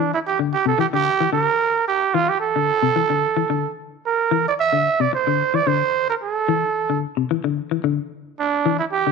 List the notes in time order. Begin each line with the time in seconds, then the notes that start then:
Already playing: E3 D4
0.14 E4
0.27 G4
0.39 D3
0.53 G4
0.66 C3 A4
0.79 E3 G4
0.93 D3 G4
1.21 E3
1.33 D3 A#4
1.88 G4
2.14 E3 F4
2.29 G4
2.41 A4
2.56 D3
2.83 C3
2.96 E3
3.10 D3
3.37 E3
3.50 D3
4.07 A#4
4.31 E3
4.48 D5
4.60 E5
4.73 D3
5.00 C3 D5
5.13 C5, muted clean electric guitar stroke
5.27 D3
5.54 E3 D5
5.67 D3 C5
6.09 A#4
6.23 A4
6.49 E3
6.90 D3
7.17 C3
7.31 E3
7.44 D3
7.71 E3
7.84 D3
8.40 D4
8.66 E3
8.79 E4
8.92 G4
9.07 D3